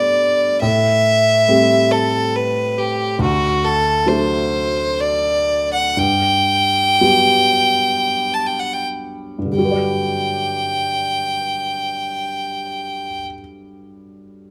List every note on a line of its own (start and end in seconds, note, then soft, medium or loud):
0.00 0.57 G2 medium
0.00 0.57 G3 soft
0.00 0.57 A3 soft
0.00 0.57 B3 soft
0.00 0.61 D5 medium
0.62 3.16 A2 soft
0.62 1.93 E5 medium
1.48 3.15 G3 soft
1.48 3.15 A3 soft
1.48 3.16 C4 soft
1.92 2.37 A4 medium
2.36 2.80 B4 medium
2.78 3.20 G4 medium
3.19 5.93 D2 soft
3.19 3.66 F#4 medium
3.64 4.09 A4 medium
4.06 5.92 F#3 soft
4.06 5.93 A3 soft
4.06 5.93 D4 soft
4.06 5.02 C5 medium
5.01 5.73 D5 medium
5.73 6.00 F#5 medium
5.97 9.37 G2 soft
5.97 8.35 G5 medium
7.01 9.51 F#3 soft
7.01 9.50 G3 soft
7.01 9.51 B3 soft
8.34 8.48 A5 medium
8.46 8.61 G5 medium
8.59 8.75 F#5 medium
8.73 8.86 G5 medium
9.39 13.07 G2 soft
9.45 13.14 D3 soft
9.52 13.20 G3 soft
9.56 13.26 F#3 soft
9.56 13.24 G5 medium
9.65 13.33 B4 soft
9.71 13.39 D5 soft